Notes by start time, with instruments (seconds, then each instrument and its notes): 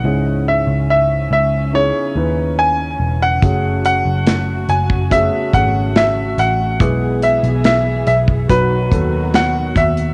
Already playing: grand piano F#5
0.04 picked electric bass C#2, upright piano G#2 C#4 E4 G#4, string section C#3 C#4
0.48 grand piano E5
0.67 picked electric bass C#2
0.90 grand piano E5
1.31 picked electric bass C#2, grand piano E5
1.73 upright piano C#4 D#4 E4 G#4, grand piano C#5
2.15 picked electric bass D#2, upright piano C#4 D#4 E4 B4
2.59 grand piano G#5
3.00 picked electric bass E1
3.22 grand piano F#5
3.42 picked electric bass F#1, upright piano C#3 A3 C#4 F#4 G#4, string section A3 F#4, kick, closed hi-hat
3.85 grand piano F#5, closed hi-hat
4.05 picked electric bass F#1
4.27 snare, closed hi-hat
4.69 picked electric bass F#1, grand piano G#5, closed hi-hat
4.90 kick
5.10 upright piano A3 C#4 F#4 G#4, grand piano E5, kick, closed hi-hat
5.53 picked electric bass G#1, upright piano A3 C#4 F#4 G#4, grand piano F#5, kick, closed hi-hat
5.96 grand piano E5, snare, closed hi-hat
6.38 picked electric bass A1, grand piano F#5, closed hi-hat
6.80 picked electric bass B1, upright piano B2 G#3 B3 E4 G#4, string section E3 B3 G#4, kick, closed hi-hat
7.22 grand piano E5, closed hi-hat
7.43 picked electric bass B1, closed hi-hat
7.64 grand piano E5, snare, closed hi-hat
8.07 picked electric bass B1, grand piano E5, closed hi-hat
8.28 kick
8.49 picked electric bass B1, upright piano B2 F#3 B3 D#4 F#4, string section D#3 F#3 F#4, grand piano B4, kick, closed hi-hat
8.91 picked electric bass D#2, upright piano D#3 F#3 B3 A4, kick, closed hi-hat
9.34 grand piano F#5, snare, closed hi-hat
9.76 picked electric bass D#2, grand piano E5, kick, closed hi-hat
9.97 closed hi-hat